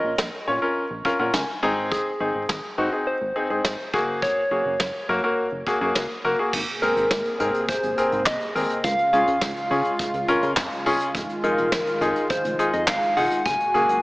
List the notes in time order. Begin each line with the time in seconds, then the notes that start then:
Already playing: C#4 F4 A#4 D#5
0.04 A#1
0.18 A#1, snare
0.47 A#2 C#4 F4 C#5
0.62 C#4 F4 A#4
0.91 A#1
1.05 C#4 F4 A#4 F5, kick
1.19 A#2 C#4 F4 A#4 F#5
1.34 C#2 G#5, snare
1.63 G#1 C4 D#4 G#4 A#5
1.92 G#4, kick
2.20 G#1 C4 D#4 G#4
2.35 G#1
2.49 G#1, snare
2.78 G#2 C4 D#4 F#4
2.92 C4 D#4 G#4
3.07 C5
3.21 G#1
3.36 C4 D#4 G#4
3.50 G#2 C4 D#4 G#4
3.65 G#1, snare
3.93 F#1 A#3 F#4 G#4, kick
4.22 C#5, kick
4.51 F#1 A#3 F#4 G#4
4.65 F#1
4.80 F#1, snare
5.09 F#2 A#3 F#4 A#4
5.24 A#3 F#4 A#4
5.52 F#1
5.67 A#3 F#4 G#4, kick
5.81 F#2 A#3 F#4 G#4
5.95 C#2, snare
6.24 F#1 A#3 F#4 A#4
6.39 A#3 F#4 G#4
6.53 G#1 C3 A#3 G#4, kick, crash
6.68 closed hi-hat
6.82 G#1 C4 G#4 A#4, closed hi-hat
6.97 G#1, closed hi-hat
7.11 G#1, kick, snare
7.25 closed hi-hat
7.40 G#2 C4 G#4 A#4, closed hi-hat
7.54 closed hi-hat
7.69 C5, kick, closed hi-hat
7.83 G#1, closed hi-hat
7.98 C4 G#4 A#4, closed hi-hat
8.12 G#2, closed hi-hat
8.26 C2 D#5, kick, snare, clap
8.41 closed hi-hat
8.55 G#1 C4 G#4 A#4, open hi-hat
8.70 closed hi-hat
8.84 C#2 C#3 G#3 F4 F5, kick, closed hi-hat
8.99 closed hi-hat
9.13 C#2 C#4 F4 G#4 F5, closed hi-hat
9.27 C#2, closed hi-hat
9.41 C#2, kick, snare
9.56 closed hi-hat
9.71 C#3 C#4 F4 G#4, open hi-hat
9.85 closed hi-hat
9.99 kick, closed hi-hat
10.14 C#2, closed hi-hat
10.28 C#4 F4 A#4, closed hi-hat
10.43 C#3, closed hi-hat
10.57 F2, kick, snare, clap
10.72 closed hi-hat
10.86 C#2 C#4 F4 G#4, open hi-hat
11.00 closed hi-hat
11.15 F1 D#3 F4, kick, closed hi-hat
11.29 closed hi-hat
11.44 F1 D#4 F4 G#4 A#4, closed hi-hat
11.58 F1, closed hi-hat
11.72 F1, kick, snare
11.87 closed hi-hat
12.01 F2 D#4 F4 G#4, closed hi-hat
12.16 closed hi-hat
12.30 C5, kick, closed hi-hat
12.45 F1, closed hi-hat
12.59 D#4 F4 G#4, closed hi-hat
12.73 F2 D#5, closed hi-hat
12.88 G#1 F5, kick, snare, clap
13.02 closed hi-hat
13.17 F1 D#4 F4 G#4 F#5, open hi-hat
13.31 closed hi-hat
13.46 F#1 A#2 F#4 G#5, kick, closed hi-hat
13.60 closed hi-hat
13.74 F#1 A#3 F#4 G#4, closed hi-hat
13.89 F#1, closed hi-hat